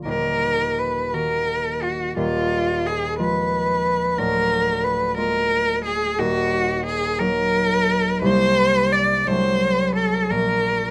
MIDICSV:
0, 0, Header, 1, 3, 480
1, 0, Start_track
1, 0, Key_signature, -6, "minor"
1, 0, Tempo, 700117
1, 43, Time_signature, 6, 3, 24, 8
1, 1959, Tempo, 665927
1, 4359, Tempo, 685714
1, 7664, End_track
2, 0, Start_track
2, 0, Title_t, "Cello"
2, 0, Program_c, 0, 42
2, 40, Note_on_c, 0, 70, 98
2, 540, Note_on_c, 0, 71, 82
2, 551, Note_off_c, 0, 70, 0
2, 779, Note_on_c, 0, 70, 93
2, 789, Note_off_c, 0, 71, 0
2, 1254, Note_on_c, 0, 66, 77
2, 1264, Note_off_c, 0, 70, 0
2, 1489, Note_off_c, 0, 66, 0
2, 1496, Note_on_c, 0, 65, 97
2, 1964, Note_on_c, 0, 68, 88
2, 1975, Note_off_c, 0, 65, 0
2, 2199, Note_off_c, 0, 68, 0
2, 2204, Note_on_c, 0, 71, 96
2, 2916, Note_on_c, 0, 70, 109
2, 2927, Note_off_c, 0, 71, 0
2, 3393, Note_on_c, 0, 71, 100
2, 3404, Note_off_c, 0, 70, 0
2, 3629, Note_off_c, 0, 71, 0
2, 3634, Note_on_c, 0, 70, 109
2, 4103, Note_off_c, 0, 70, 0
2, 4119, Note_on_c, 0, 68, 98
2, 4362, Note_on_c, 0, 66, 108
2, 4373, Note_off_c, 0, 68, 0
2, 4831, Note_off_c, 0, 66, 0
2, 4835, Note_on_c, 0, 68, 102
2, 5066, Note_on_c, 0, 70, 107
2, 5077, Note_off_c, 0, 68, 0
2, 5784, Note_off_c, 0, 70, 0
2, 5788, Note_on_c, 0, 72, 119
2, 6277, Note_on_c, 0, 74, 96
2, 6287, Note_off_c, 0, 72, 0
2, 6519, Note_on_c, 0, 72, 107
2, 6529, Note_off_c, 0, 74, 0
2, 7000, Note_off_c, 0, 72, 0
2, 7004, Note_on_c, 0, 69, 94
2, 7242, Note_on_c, 0, 70, 100
2, 7253, Note_off_c, 0, 69, 0
2, 7664, Note_off_c, 0, 70, 0
2, 7664, End_track
3, 0, Start_track
3, 0, Title_t, "Harp"
3, 0, Program_c, 1, 46
3, 0, Note_on_c, 1, 58, 33
3, 32, Note_on_c, 1, 27, 61
3, 37, Note_on_c, 1, 39, 65
3, 766, Note_off_c, 1, 58, 0
3, 771, Note_on_c, 1, 51, 47
3, 774, Note_on_c, 1, 58, 45
3, 778, Note_on_c, 1, 66, 53
3, 1474, Note_off_c, 1, 27, 0
3, 1476, Note_off_c, 1, 39, 0
3, 1481, Note_on_c, 1, 27, 63
3, 1486, Note_on_c, 1, 39, 72
3, 1503, Note_off_c, 1, 51, 0
3, 1505, Note_off_c, 1, 58, 0
3, 1507, Note_off_c, 1, 66, 0
3, 2196, Note_on_c, 1, 53, 57
3, 2200, Note_on_c, 1, 56, 55
3, 2205, Note_on_c, 1, 65, 54
3, 2912, Note_on_c, 1, 26, 68
3, 2916, Note_on_c, 1, 38, 72
3, 2934, Note_off_c, 1, 27, 0
3, 2934, Note_off_c, 1, 39, 0
3, 3614, Note_off_c, 1, 56, 0
3, 3623, Note_on_c, 1, 56, 58
3, 3624, Note_off_c, 1, 65, 0
3, 3628, Note_on_c, 1, 58, 59
3, 3633, Note_on_c, 1, 65, 61
3, 4359, Note_on_c, 1, 27, 67
3, 4363, Note_on_c, 1, 39, 78
3, 4372, Note_off_c, 1, 56, 0
3, 4375, Note_off_c, 1, 53, 0
3, 4376, Note_off_c, 1, 26, 0
3, 4377, Note_off_c, 1, 38, 0
3, 4377, Note_off_c, 1, 65, 0
3, 5060, Note_off_c, 1, 58, 0
3, 5066, Note_on_c, 1, 54, 61
3, 5070, Note_on_c, 1, 58, 54
3, 5073, Note_on_c, 1, 63, 63
3, 5780, Note_on_c, 1, 36, 78
3, 5789, Note_off_c, 1, 58, 0
3, 5792, Note_on_c, 1, 48, 68
3, 5794, Note_off_c, 1, 63, 0
3, 5797, Note_on_c, 1, 58, 62
3, 5803, Note_on_c, 1, 63, 55
3, 5806, Note_on_c, 1, 55, 58
3, 5808, Note_off_c, 1, 54, 0
3, 5810, Note_off_c, 1, 27, 0
3, 5810, Note_off_c, 1, 39, 0
3, 6514, Note_off_c, 1, 36, 0
3, 6517, Note_on_c, 1, 36, 72
3, 6521, Note_off_c, 1, 48, 0
3, 6530, Note_on_c, 1, 48, 60
3, 6535, Note_on_c, 1, 57, 53
3, 6539, Note_on_c, 1, 62, 53
3, 6543, Note_on_c, 1, 54, 54
3, 6547, Note_off_c, 1, 55, 0
3, 6549, Note_off_c, 1, 58, 0
3, 6552, Note_off_c, 1, 63, 0
3, 7241, Note_on_c, 1, 34, 69
3, 7245, Note_on_c, 1, 46, 60
3, 7262, Note_off_c, 1, 36, 0
3, 7262, Note_off_c, 1, 48, 0
3, 7263, Note_off_c, 1, 54, 0
3, 7265, Note_off_c, 1, 57, 0
3, 7664, Note_off_c, 1, 34, 0
3, 7664, Note_off_c, 1, 46, 0
3, 7664, Note_off_c, 1, 62, 0
3, 7664, End_track
0, 0, End_of_file